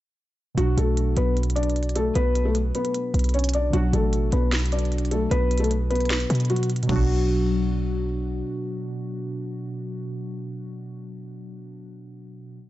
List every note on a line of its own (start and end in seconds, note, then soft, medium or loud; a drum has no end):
0.55 0.77 B1 loud
0.55 3.68 B2 medium
0.55 3.69 F#3 medium
0.55 0.76 F#3 medium
0.55 0.75 F#4 loud
0.55 closed hi-hat medium
0.59 3.70 D4 medium
0.59 3.71 F#4 medium
0.77 1.15 B1 loud
0.77 1.15 A3 medium
0.77 1.15 A4 medium
0.77 closed hi-hat medium
0.97 closed hi-hat medium
1.17 2.12 B1 loud
1.17 1.35 B3 medium
1.17 1.35 B4 medium
1.17 closed hi-hat medium
1.37 closed hi-hat soft
1.43 closed hi-hat medium
1.50 closed hi-hat medium
1.56 1.93 D4 medium
1.56 1.93 D5 medium
1.56 closed hi-hat medium
1.63 closed hi-hat medium
1.70 closed hi-hat soft
1.76 closed hi-hat soft
1.83 closed hi-hat medium
1.89 closed hi-hat medium
1.96 2.14 A3 medium
1.96 2.13 A4 medium
1.96 closed hi-hat medium
2.15 2.72 B1 loud
2.15 2.44 B3 medium
2.15 2.43 B4 loud
2.15 closed hi-hat medium
2.35 closed hi-hat medium
2.45 2.54 A3 medium
2.45 2.54 A4 medium
2.55 closed hi-hat medium
2.75 3.31 B3 medium
2.75 3.31 B4 medium
2.75 closed hi-hat medium
2.85 closed hi-hat medium
2.94 closed hi-hat medium
3.14 3.71 B1 loud
3.14 closed hi-hat medium
3.19 closed hi-hat medium
3.24 closed hi-hat medium
3.29 closed hi-hat medium
3.34 3.52 C#4 medium
3.34 3.52 C#5 medium
3.34 closed hi-hat soft
3.39 closed hi-hat medium
3.44 closed hi-hat medium
3.49 closed hi-hat medium
3.54 3.72 D4 medium
3.54 3.72 D5 medium
3.54 closed hi-hat medium
3.70 3.92 B1 loud
3.70 6.82 B2 medium
3.70 6.85 F#3 medium
3.70 3.91 F#3 medium
3.70 3.91 F#4 loud
3.70 closed hi-hat medium
3.74 6.86 D4 medium
3.74 6.87 F#4 medium
3.93 4.31 A1 loud
3.93 4.31 A3 medium
3.93 4.31 A4 medium
3.93 closed hi-hat medium
4.13 closed hi-hat medium
4.32 5.27 B1 loud
4.32 4.51 B3 medium
4.32 4.50 B4 medium
4.32 closed hi-hat medium
4.52 snare loud
4.52 closed hi-hat soft
4.59 closed hi-hat medium
4.66 closed hi-hat medium
4.72 5.10 D4 medium
4.72 5.09 D5 medium
4.72 closed hi-hat medium
4.79 closed hi-hat medium
4.85 closed hi-hat soft
4.92 closed hi-hat soft
4.98 closed hi-hat medium
5.05 closed hi-hat medium
5.11 5.30 A3 medium
5.11 5.29 A4 medium
5.11 closed hi-hat medium
5.31 6.26 B1 loud
5.31 5.60 B3 medium
5.31 5.59 B4 loud
5.31 closed hi-hat medium
5.51 closed hi-hat medium
5.58 5.69 A3 medium
5.58 5.69 A4 medium
5.58 closed hi-hat medium
5.64 closed hi-hat medium
5.71 closed hi-hat medium
5.90 6.47 B3 medium
5.90 6.46 B4 medium
5.90 closed hi-hat soft
5.95 closed hi-hat medium
6.00 closed hi-hat medium
6.05 closed hi-hat medium
6.10 snare loud
6.10 closed hi-hat soft
6.20 closed hi-hat medium
6.30 6.87 B2 loud
6.30 closed hi-hat medium
6.35 closed hi-hat medium
6.40 closed hi-hat soft
6.45 closed hi-hat soft
6.50 6.68 F#3 medium
6.50 6.67 F#4 medium
6.50 closed hi-hat soft
6.56 closed hi-hat medium
6.63 closed hi-hat medium
6.70 closed hi-hat medium
6.76 closed hi-hat medium
6.83 11.08 B2 medium
6.83 closed hi-hat medium
6.87 8.43 B1 loud
6.87 11.12 F#3 medium
6.87 8.04 F#3 medium
6.87 kick loud
6.87 crash medium
6.91 11.16 D4 medium
6.96 11.21 F#4 medium